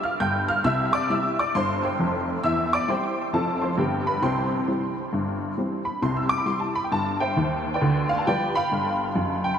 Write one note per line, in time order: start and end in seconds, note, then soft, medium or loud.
0.03 0.20 F5 medium
0.03 0.20 F6 medium
0.20 0.56 G1 medium
0.20 0.56 G2 medium
0.20 0.47 G5 medium
0.20 0.48 G6 medium
0.48 0.65 F5 medium
0.48 0.65 F6 medium
0.64 1.03 C2 medium
0.64 1.03 C3 medium
0.64 0.92 E5 medium
0.64 0.93 E6 loud
0.93 1.10 D5 medium
0.93 1.10 D6 loud
1.10 1.34 G3 soft
1.10 1.35 C4 soft
1.10 1.35 E4 soft
1.10 1.37 E5 medium
1.10 1.38 E6 medium
1.39 1.55 D5 medium
1.39 1.55 D6 medium
1.55 1.93 G1 medium
1.55 1.93 G2 medium
1.55 1.82 C5 medium
1.55 1.82 C6 loud
1.83 2.25 C5 medium
1.83 2.25 G5 medium
1.83 2.28 C6 medium
1.99 2.35 F1 medium
1.99 2.35 F2 medium
2.44 2.82 E2 medium
2.44 2.82 E3 medium
2.44 2.71 E5 medium
2.44 2.72 E6 loud
2.73 2.89 D5 medium
2.73 2.90 D6 loud
2.88 3.13 G3 soft
2.88 3.13 C4 soft
2.88 3.14 E4 soft
2.88 3.31 C5 medium
2.88 3.31 G5 medium
2.88 3.34 C6 medium
3.33 3.71 F1 medium
3.33 3.72 F2 medium
3.33 3.58 F3 soft
3.33 3.59 C4 soft
3.33 3.60 A4 medium
3.33 3.62 A5 medium
3.62 3.78 C5 soft
3.62 3.79 C6 medium
3.78 4.16 G1 soft
3.78 4.16 G2 medium
3.78 4.03 D3 soft
3.78 4.03 G3 soft
3.78 4.04 B3 soft
3.78 4.05 G4 medium
3.78 4.06 G5 medium
4.07 4.23 B4 medium
4.07 4.24 B5 medium
4.22 4.61 C2 medium
4.22 4.61 C3 medium
4.22 5.54 C5 soft
4.22 5.54 G5 medium
4.22 5.57 C6 medium
4.67 4.92 E3 soft
4.67 4.93 G3 soft
4.67 4.93 C4 soft
5.13 5.51 G1 medium
5.13 5.51 G2 medium
5.58 5.82 E3 soft
5.58 5.82 G3 soft
5.58 5.83 C4 soft
5.85 6.02 B5 medium
6.02 6.41 C2 medium
6.02 6.40 C3 medium
6.02 6.16 C6 medium
6.17 6.30 E6 medium
6.29 6.38 D6 loud
6.38 6.47 B5 medium
6.45 6.70 E3 soft
6.45 6.71 G3 soft
6.45 6.71 E4 soft
6.45 6.61 C6 medium
6.60 6.74 A5 medium
6.75 6.84 B5 medium
6.84 6.92 G5 medium
6.92 7.30 G1 medium
6.92 7.30 G2 medium
6.92 7.20 A5 medium
7.20 7.70 C5 medium
7.20 7.70 E5 soft
7.20 7.73 G5 medium
7.37 7.73 D#2 medium
7.37 7.73 D#3 medium
7.74 8.08 B4 soft
7.74 8.08 D5 medium
7.74 8.10 G5 medium
7.81 8.20 D2 medium
7.81 8.19 D3 medium
8.09 8.18 F5 medium
8.18 8.26 A5 medium
8.27 8.51 F3 soft
8.27 8.52 G3 soft
8.27 8.52 G4 soft
8.27 8.53 B4 medium
8.27 8.53 D5 medium
8.27 8.55 G5 medium
8.56 9.41 F5 medium
8.56 9.41 G5 medium
8.56 9.44 B5 loud
8.72 9.10 G1 medium
8.72 9.10 G2 medium
9.15 9.52 F#1 medium
9.15 9.52 F#2 medium
9.44 9.52 G5 medium
9.54 9.59 B5 medium